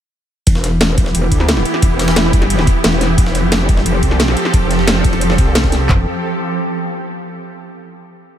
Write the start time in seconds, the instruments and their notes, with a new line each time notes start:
0.47 wobble bass E1, synth drone E3 B3 E4 G4, kick, closed hi-hat, ride
0.55 snare
0.64 snare, closed hi-hat, ride
0.81 snare, closed hi-hat, open hi-hat
0.98 wobble bass F1, kick, closed hi-hat, ride
1.06 snare
1.15 wobble bass E1, closed hi-hat, ride
1.32 wobble bass D2, kick, closed hi-hat, ride
1.40 snare
1.49 snare, closed hi-hat, ride
1.57 snare
1.65 closed hi-hat, ride
1.74 snare
1.82 wobble bass E1, kick, closed hi-hat, ride
1.99 snare, closed hi-hat, open hi-hat
2.08 snare, open hi-hat
2.16 snare, closed hi-hat, ride
2.33 wobble bass G1, kick, closed hi-hat, ride
2.42 snare, ride
2.50 closed hi-hat, ride
2.59 snare
2.67 kick, closed hi-hat, ride
2.84 wobble bass E1, snare, closed hi-hat, ride
2.93 snare
3.01 snare, closed hi-hat, ride
3.18 wobble bass F1, synth drone F3 C4 G4 A4, kick, closed hi-hat, ride
3.26 snare
3.35 snare, closed hi-hat, ride
3.52 snare, closed hi-hat, open hi-hat
3.69 wobble bass G1, kick, closed hi-hat, ride
3.77 snare
3.86 wobble bass F1, closed hi-hat, ride
4.03 wobble bass C2, kick, closed hi-hat, ride
4.11 snare
4.20 snare, closed hi-hat, ride
4.28 snare
4.37 closed hi-hat, ride
4.45 snare
4.54 wobble bass F1, kick, closed hi-hat, ride
4.71 snare, closed hi-hat, ride
4.79 snare
4.88 snare, closed hi-hat, ride
5.04 wobble bass F1, kick, closed hi-hat, ride
5.13 snare, ride
5.21 closed hi-hat, ride
5.30 snare
5.38 wobble bass C2, kick, closed hi-hat, ride
5.55 snare, closed hi-hat, ride
5.64 kick, snare
5.72 snare, closed hi-hat, ride
5.89 wobble bass E1, kick, clap, floor tom